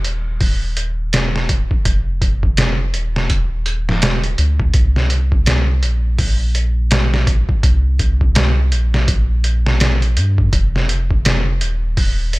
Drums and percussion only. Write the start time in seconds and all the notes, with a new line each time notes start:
0.05 closed hi-hat
0.41 kick, open hi-hat
0.77 closed hi-hat
1.13 snare, closed hi-hat
1.36 snare
1.49 kick, closed hi-hat
1.71 kick
1.85 kick, closed hi-hat
2.22 kick, closed hi-hat
2.43 kick
2.57 snare, closed hi-hat
2.94 closed hi-hat
3.16 snare
3.30 kick, closed hi-hat
3.66 closed hi-hat
3.89 snare
4.02 snare, closed hi-hat
4.24 closed hi-hat
4.38 closed hi-hat
4.60 kick
4.74 kick, closed hi-hat
4.96 snare
5.10 closed hi-hat
5.32 kick
5.46 snare, closed hi-hat
5.83 closed hi-hat
6.19 kick, open hi-hat
6.55 closed hi-hat
6.91 snare, closed hi-hat
7.14 snare
7.27 kick, closed hi-hat
7.49 kick
7.63 kick, closed hi-hat
7.99 kick, closed hi-hat
8.21 kick
8.35 snare, closed hi-hat
8.72 closed hi-hat
8.94 snare
9.08 kick, closed hi-hat
9.44 closed hi-hat
9.66 snare
9.80 snare, closed hi-hat
10.02 closed hi-hat
10.17 closed hi-hat
10.38 kick
10.53 kick, closed hi-hat
10.76 snare
10.89 closed hi-hat
11.11 kick
11.25 snare, closed hi-hat
11.61 closed hi-hat
11.97 kick, open hi-hat
12.33 closed hi-hat